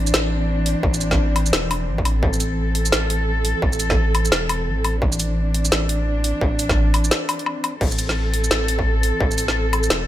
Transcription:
Already playing: A1 E3 C4 D4
0.07 shaker
0.13 A1, snare
0.66 closed hi-hat
0.83 A1, kick
0.94 shaker
1.01 shaker
1.11 kick, snare
1.36 closed hi-hat, low woodblock
1.46 shaker
1.53 E1, snare
1.71 closed hi-hat, low woodblock
1.88 A1
1.98 kick
2.05 closed hi-hat, low woodblock
2.23 A1 A4, kick
2.33 shaker
2.40 closed hi-hat, shaker
2.75 closed hi-hat
2.85 shaker
2.92 A1, snare
3.10 closed hi-hat
3.45 closed hi-hat
3.62 A1, kick
3.73 shaker
3.80 closed hi-hat, shaker
3.90 kick, snare
4.15 closed hi-hat, low woodblock
4.25 shaker
4.32 E1, snare
4.49 closed hi-hat, low woodblock
4.67 A1
4.85 closed hi-hat, low woodblock
5.02 A1 D4, kick
5.12 shaker
5.20 closed hi-hat, shaker
5.54 closed hi-hat
5.65 shaker
5.72 A1, snare
5.89 closed hi-hat
6.24 closed hi-hat
6.41 A1, kick
6.59 closed hi-hat, shaker
6.69 kick, snare
6.94 closed hi-hat, low woodblock
7.04 shaker
7.11 snare
7.29 closed hi-hat, low woodblock
7.39 closed hi-hat
7.46 low woodblock
7.64 closed hi-hat, low woodblock
7.81 A1 E3 C4 A4, kick, crash
7.92 shaker
7.99 closed hi-hat, shaker
8.09 snare
8.34 closed hi-hat
8.44 shaker
8.51 A1, snare
8.68 closed hi-hat
8.79 kick
9.03 closed hi-hat
9.21 A1, kick
9.31 shaker
9.38 closed hi-hat, shaker
9.48 snare
9.73 closed hi-hat, low woodblock
9.83 shaker
9.90 E1, snare

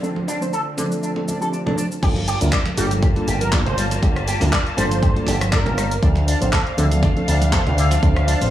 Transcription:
Already playing: D3 C4 F4
0.02 F3 A3 C4 D4 A4, cabasa
0.16 high conga
0.28 D4, muted conga, cabasa
0.41 F3 A3 C4 D4 C5, cabasa
0.53 A4, cabasa
0.77 D3 F3 A3 C4 D4 A4, muted conga, high conga, cabasa
0.92 cabasa
1.03 D4, cabasa
1.16 F3 A3 C4 D4 A4, muted conga
1.28 D4, high conga, cabasa
1.41 F3 A3 C4 D4 G4 A4, cabasa
1.53 D4, cabasa
1.66 F3 A3 C4 D4 A4, muted conga, low conga
1.78 D4, high conga, cabasa
1.92 cabasa
2.02 G1 G3 A#3 D4 F4 G4 A4 A5, kick, closed hi-hat, crash, cabasa
2.16 closed hi-hat, muted conga
2.28 G4, open hi-hat, cabasa
2.41 D2 G3 A#3 D4 F4 A#4, closed hi-hat, cabasa
2.52 D5, kick, clap, closed hi-hat, cabasa
2.66 closed hi-hat, muted conga
2.77 G1 G3 A#3 D4 F4 G4 A4, open hi-hat, cabasa
2.91 closed hi-hat, high conga, cabasa
3.03 G4, kick, closed hi-hat, muted conga, cabasa
3.16 G3 A#3 D4 F4 A4, closed hi-hat
3.28 G1 G4, open hi-hat, cabasa
3.41 A#4, closed hi-hat, high conga, cabasa
3.52 G3 A#3 D4 F4 A#4 D5, kick, clap, closed hi-hat, muted conga, cabasa
3.66 G1 C5, closed hi-hat, low conga
3.78 G3, open hi-hat, cabasa
3.91 closed hi-hat, muted conga, cabasa
4.02 G1 G3 A#3 D4 F4 G4 A4, kick, closed hi-hat, cabasa
4.16 cross-stick, closed hi-hat
4.28 G4, open hi-hat, cabasa
4.40 D2 G3 A#3 D4 F4 A#4, open hi-hat, muted conga, cabasa
4.53 D5, kick, clap, closed hi-hat, cabasa
4.67 closed hi-hat
4.77 G1 G3 A#3 D4 F4 A4 C5, open hi-hat, muted conga, cabasa
4.91 closed hi-hat, high conga, cabasa
5.03 G4, kick, closed hi-hat, cabasa
5.16 G3 A#3 D4 F4 A4, closed hi-hat
5.27 G1 G4, open hi-hat, muted conga, cabasa
5.41 cross-stick, closed hi-hat, high conga, cabasa
5.52 G3 A#3 D4 F4 A#4 D5, kick, clap, closed hi-hat, cabasa
5.66 G1, closed hi-hat, muted conga, low conga
5.78 G3, cross-stick, open hi-hat, cabasa
5.91 closed hi-hat, cabasa
6.02 D2 F3 A3 C4 D4 A4 C5 F5, kick, closed hi-hat, cabasa
6.16 closed hi-hat, muted conga
6.28 D4, open hi-hat, cabasa
6.41 A1 F3 A3 C4 D4 C5, closed hi-hat, cabasa
6.53 A4, kick, clap, closed hi-hat, muted conga, cabasa
6.67 closed hi-hat
6.77 D2 D3 F3 A3 C4 D4 A4, open hi-hat, cabasa
6.91 closed hi-hat, high conga, cabasa
7.03 D4, kick, closed hi-hat, muted conga, cabasa
7.16 F3 A3 C4 D4 A4, closed hi-hat
7.28 D2 D4, open hi-hat, cabasa
7.42 closed hi-hat, muted conga, high conga, cabasa
7.53 F3 A3 C4 D4 A4 C5, kick, clap, closed hi-hat, cabasa
7.66 D2, closed hi-hat, low conga
7.78 D3, open hi-hat, cabasa
7.91 closed hi-hat, muted conga, cabasa
8.02 D2 F3 A3 C4 D4 A4, kick, closed hi-hat, cabasa
8.16 cross-stick, closed hi-hat
8.28 D4, open hi-hat, muted conga, cabasa
8.41 A1 F3 A3 C4 D4 C5, open hi-hat, cabasa

